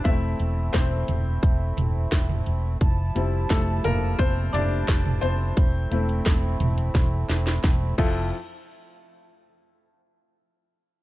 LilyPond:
<<
  \new Staff \with { instrumentName = "Upright piano" } { \time 4/4 \key a \phrygian \tempo 4 = 87 << { e''4 <c' c''>4 r2 | r4 <a a'>8 <bes bes'>8 <c' c''>8 <d' d''>4 <c' c''>8~ | <c' c''>2. r8 <e' f' a'>8 | r1 | } \\ { <a c' e'>1 | r8 <g c' e'>4. r8 <g a e'>8 r4 | r8 <a c' e'>8 r2 r8 f,8 | r1 | } >> }
  \new Staff \with { instrumentName = "Harmonium" } { \time 4/4 \key a \phrygian <a c' e'>1 | <f e' a''>1 | <a c'>2.~ <a c'>8 <f a' e''>8 | r1 | }
  \new Staff \with { instrumentName = "Fingered electric bass" } { \clef bass \time 4/4 \key a \phrygian e,,8 e,,8 e,,8 e,,8 e,,8 e,,8 e,,8 e,,8 | f,,8 f,,8 f,,8 f,,8 f,,8 f,,8 f,,8 f,,8 | e,,8 e,,8 e,,8 e,,8 e,,8 e,,8 e,,8 f,,8 | r1 | }
  \new DrumStaff \with { instrumentName = "Drums" } \drummode { \time 4/4 <hh bd>8 hh8 <hh bd sn>8 <hh tomfh>8 <hh bd>8 <hh tomfh>8 <hh bd sn>16 tomfh16 hh8 | <hh bd>8 hh8 <hh bd sn>8 <hh tomfh>8 <hh bd>8 <hh tomfh>8 <hh bd sn>16 tomfh16 hh8 | <hh bd>8 hh16 hh16 <hh bd sn>8 <hh tomfh>16 hh16 <hh bd sn>8 <hh sn>16 sn16 <hh bd sn>8 <cymc bd>8 | r4 r4 r4 r4 | }
>>